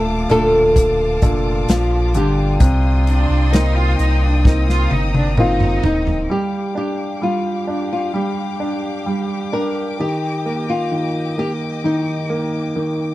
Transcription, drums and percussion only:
0.30 closed hi-hat medium
0.76 kick medium
0.76 closed hi-hat medium
1.22 kick medium
1.22 closed hi-hat medium
1.68 snare loud
1.68 closed hi-hat medium
2.14 closed hi-hat medium
2.60 kick loud
2.60 closed hi-hat medium
3.07 closed hi-hat medium
3.53 snare medium
3.53 closed hi-hat medium
3.99 closed hi-hat medium
4.45 kick medium
4.45 snare medium
4.69 snare medium
4.91 high tom medium
5.14 high tom medium
5.37 mid tom medium
5.60 mid tom medium
5.84 floor tom loud
6.07 floor tom medium

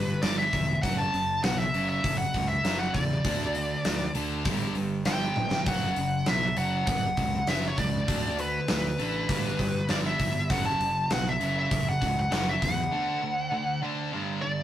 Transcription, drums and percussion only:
0.22 snare loud
0.22 open hi-hat medium
0.53 kick medium
0.53 open hi-hat soft
0.83 kick loud
0.83 open hi-hat medium
1.14 open hi-hat soft
1.44 snare loud
1.44 open hi-hat medium
1.59 snare soft
1.74 open hi-hat soft
2.04 kick loud
2.04 open hi-hat medium
2.34 kick medium
2.34 open hi-hat soft
2.65 snare medium
2.65 open hi-hat medium
2.94 kick medium
2.94 open hi-hat soft
3.25 kick loud
3.25 open hi-hat medium
3.55 open hi-hat medium
3.85 snare loud
3.85 open hi-hat medium
4.15 open hi-hat medium
4.45 kick loud
4.45 open hi-hat medium
4.75 open hi-hat soft
5.05 snare loud
5.05 open hi-hat medium
5.36 high tom medium
5.51 snare medium
5.66 kick loud
5.66 open hi-hat medium
5.96 open hi-hat soft
6.26 snare loud
6.26 open hi-hat medium
6.57 open hi-hat soft
6.87 kick loud
6.87 open hi-hat medium
7.17 kick medium
7.17 open hi-hat soft
7.47 snare medium
7.47 open hi-hat medium
7.78 kick medium
7.78 open hi-hat medium
8.08 kick loud
8.08 open hi-hat medium
8.39 open hi-hat medium
8.68 snare loud
8.68 open hi-hat medium
8.99 open hi-hat soft
9.29 kick loud
9.29 open hi-hat medium
9.59 kick medium
9.59 open hi-hat soft
9.89 snare medium
9.89 open hi-hat medium
10.19 kick medium
10.19 open hi-hat medium
10.50 kick loud
10.50 open hi-hat medium
10.81 open hi-hat medium
11.10 snare loud
11.10 open hi-hat medium
11.27 snare soft
11.41 open hi-hat soft
11.71 kick loud
11.71 open hi-hat medium
12.02 kick medium
12.02 open hi-hat soft
12.32 snare loud
12.32 open hi-hat medium
12.62 kick medium
12.62 open hi-hat medium

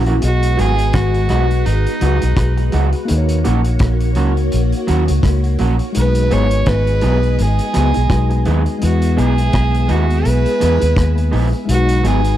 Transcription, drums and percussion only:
0.06 closed hi-hat medium
0.22 closed hi-hat medium
0.42 closed hi-hat medium
0.59 closed hi-hat medium
0.78 closed hi-hat soft
0.93 kick loud
0.93 cross-stick medium
0.93 closed hi-hat medium
1.14 closed hi-hat soft
1.29 cross-stick medium
1.29 closed hi-hat medium
1.51 closed hi-hat soft
1.66 closed hi-hat medium
1.86 closed hi-hat medium
2.01 closed hi-hat medium
2.21 closed hi-hat medium
2.37 kick loud
2.37 cross-stick loud
2.37 closed hi-hat medium
2.57 closed hi-hat soft
2.72 closed hi-hat medium
2.92 closed hi-hat soft
3.08 closed hi-hat medium
3.28 closed hi-hat medium
3.44 closed hi-hat medium
3.64 closed hi-hat soft
3.79 kick loud
3.79 cross-stick loud
3.79 closed hi-hat medium
4.00 closed hi-hat medium
4.15 closed hi-hat medium
4.37 closed hi-hat soft
4.52 closed hi-hat medium
4.72 closed hi-hat medium
4.88 closed hi-hat medium
5.08 closed hi-hat medium
5.23 kick loud
5.23 cross-stick loud
5.23 closed hi-hat medium
5.44 closed hi-hat soft
5.58 closed hi-hat medium
5.79 closed hi-hat soft
5.94 closed hi-hat medium
6.15 closed hi-hat medium
6.31 closed hi-hat medium
6.51 closed hi-hat soft
6.66 kick loud
6.66 cross-stick loud
6.66 closed hi-hat medium
6.87 closed hi-hat soft
7.01 closed hi-hat medium
7.23 closed hi-hat soft
7.38 closed hi-hat medium
7.58 closed hi-hat soft
7.74 cross-stick medium
7.74 closed hi-hat medium
7.94 closed hi-hat medium
8.10 kick loud
8.10 cross-stick loud
8.10 closed hi-hat medium
8.30 closed hi-hat soft
8.45 closed hi-hat medium
8.66 closed hi-hat soft
8.81 closed hi-hat medium
9.02 closed hi-hat medium
9.18 closed hi-hat medium
9.38 closed hi-hat soft
9.53 kick loud
9.53 cross-stick loud
9.53 closed hi-hat medium
9.74 closed hi-hat medium
9.89 closed hi-hat medium
10.10 closed hi-hat soft
10.25 closed hi-hat medium
10.46 closed hi-hat medium
10.61 closed hi-hat medium
10.81 closed hi-hat medium
10.96 kick loud
10.96 cross-stick loud
10.96 closed hi-hat medium
11.18 closed hi-hat soft
11.32 open hi-hat medium
11.53 closed hi-hat soft
11.69 closed hi-hat medium
11.88 closed hi-hat medium
12.04 closed hi-hat medium
12.24 closed hi-hat medium

